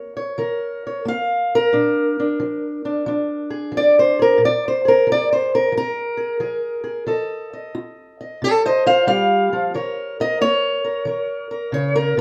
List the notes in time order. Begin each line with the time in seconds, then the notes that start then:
Already playing: A#3 A#4 C#5
0.17 C#5
0.38 D#3 A#4
0.87 C#5
1.05 A#3 F5
1.55 A#4
1.73 A#2 D4
2.20 D4
2.40 F3
2.85 D4
3.06 F3 D4
3.50 G#4
3.72 F3
3.77 D5
3.99 C5
4.19 G#4 A#4
4.38 A#2
4.45 D5
4.68 C5
4.85 G#4 A#4
5.07 F3
5.12 D5
5.33 C5
5.55 A#4
5.72 F3
5.77 A#4
6.17 G#4
6.40 F3 G#4
6.84 G#4
7.07 F3 A4 D#5
7.53 D#5
7.75 F4
8.21 D#5
8.42 C3 A4 C#5
8.66 C5 D#5
8.86 F4 C5 F5
9.07 G3 F5
9.53 F3
9.74 D#3 A#4 C#5
10.20 A#4 D#5
10.41 A#3 C#5
10.84 A#4
11.05 D#3 A#4
11.51 A#4
11.72 C#3 C#5
11.96 A#4
12.17 C3